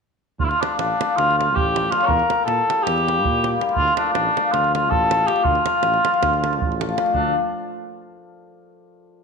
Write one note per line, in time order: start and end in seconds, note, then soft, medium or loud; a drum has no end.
0.39 0.53 D2 medium
0.39 0.46 F4 medium
0.39 davul low medium
0.45 0.51 E4 medium
0.49 0.63 F4 loud
0.49 davul high soft
0.61 0.98 F3 medium
0.61 0.76 A3 medium
0.61 0.77 D4 medium
0.61 0.77 F4 medium
0.61 davul high medium
0.78 0.91 A1 medium
0.78 1.18 D4 medium
0.78 davul high medium
0.99 1.36 F3 medium
0.99 1.15 A3 medium
0.99 1.15 D4 medium
0.99 1.16 F4 medium
0.99 davul high medium
1.17 1.57 D2 medium
1.17 1.37 F4 medium
1.17 davul high medium
1.31 davul high soft
1.37 1.72 F3 medium
1.37 1.53 A3 medium
1.37 1.53 D4 soft
1.37 1.57 F4 medium
1.37 1.54 F4 medium
1.37 davul high medium
1.55 1.87 A1 medium
1.55 1.92 G4 medium
1.55 davul low medium
1.74 1.88 F3 medium
1.74 1.89 A3 soft
1.74 1.89 D4 medium
1.74 1.89 F4 medium
1.74 davul high medium
1.89 2.14 F3 medium
1.89 2.05 A3 medium
1.89 2.05 D4 medium
1.89 2.04 F4 medium
1.89 2.06 F4 medium
1.89 davul high medium
2.01 2.08 C#5 medium
2.01 davul high soft
2.06 2.21 E2 medium
2.06 2.44 A#4 loud
2.06 davul low medium
2.19 davul high soft
2.28 2.66 G3 medium
2.28 2.44 A#3 medium
2.28 2.44 E4 medium
2.28 2.44 G4 medium
2.28 davul high medium
2.45 2.60 A#2 medium
2.45 2.84 A4 medium
2.45 davul high medium
2.68 3.05 G3 medium
2.68 2.83 A#3 medium
2.68 2.83 E4 medium
2.68 2.84 G4 medium
2.68 davul high medium
2.83 3.26 E2 medium
2.83 3.59 G4 medium
2.87 davul high medium
2.98 davul high soft
3.06 3.42 G3 medium
3.06 3.21 A#3 medium
3.06 3.22 E4 medium
3.06 3.22 G4 medium
3.06 davul high soft
3.25 3.56 A#2 medium
3.25 davul low medium
3.43 3.58 G3 medium
3.43 3.58 A#3 medium
3.43 3.58 E4 medium
3.43 3.59 G4 medium
3.43 davul high medium
3.59 3.82 G3 medium
3.59 3.74 A#3 medium
3.59 3.74 E4 medium
3.59 3.74 G4 medium
3.59 davul high soft
3.69 3.94 F4 loud
3.69 davul high soft
3.76 3.89 D2 medium
3.76 davul low medium
3.88 davul high soft
3.96 4.35 F3 medium
3.96 4.13 A3 medium
3.96 4.12 D4 medium
3.96 4.13 D4 medium
3.96 4.13 F4 medium
3.96 davul high medium
4.12 4.28 A1 medium
4.12 4.54 D4 medium
4.12 davul high medium
4.36 4.73 F3 medium
4.36 4.51 A3 medium
4.36 4.52 D4 medium
4.36 4.52 F4 medium
4.36 davul high medium
4.52 4.94 D2 medium
4.52 4.73 F4 medium
4.52 davul high medium
4.64 davul high soft
4.74 5.11 F3 medium
4.74 4.90 A3 soft
4.74 4.90 D4 soft
4.74 4.91 F4 medium
4.74 davul high medium
4.90 5.24 A1 medium
4.90 5.28 A4 loud
4.90 davul low medium
5.11 5.28 F3 medium
5.11 5.26 A3 medium
5.11 5.27 D4 medium
5.11 5.27 F4 medium
5.11 davul high medium
5.26 5.50 F3 medium
5.26 5.43 A3 soft
5.26 5.43 D4 medium
5.26 5.45 G4 medium
5.26 davul high medium
5.31 5.44 F4 medium
5.36 davul high soft
5.43 5.58 D2 medium
5.43 6.80 F4 medium
5.43 davul low medium
5.55 davul high soft
5.65 6.03 F3 medium
5.65 5.81 A3 medium
5.65 5.81 D4 medium
5.65 5.82 F4 medium
5.65 davul high medium
5.83 5.97 A1 medium
5.83 davul high medium
5.94 davul high soft
6.04 6.42 F3 medium
6.04 6.20 A3 medium
6.04 6.20 D4 medium
6.04 6.21 F4 medium
6.04 davul high medium
6.14 davul high soft
6.23 6.64 D2 medium
6.23 davul high medium
6.23 davul low medium
6.33 davul high soft
6.44 6.79 F3 medium
6.44 6.59 A3 medium
6.44 6.59 D4 medium
6.44 6.60 F4 medium
6.44 davul high medium
6.53 davul high soft
6.62 6.94 A1 medium
6.62 davul low medium
6.72 davul high soft
6.80 6.96 F3 medium
6.80 6.95 A3 medium
6.80 6.95 D4 medium
6.80 6.96 F4 medium
6.80 davul high medium
6.89 davul high soft
6.97 7.13 F3 medium
6.97 7.12 A3 medium
6.97 7.12 D4 medium
6.97 7.13 F4 medium
6.97 davul high medium
7.06 davul high soft
7.14 7.35 D2 medium
7.14 7.35 F3 medium
7.14 7.35 A3 medium
7.14 7.34 D4 medium
7.14 7.35 D4 medium
7.14 7.35 F4 medium
7.14 davul low medium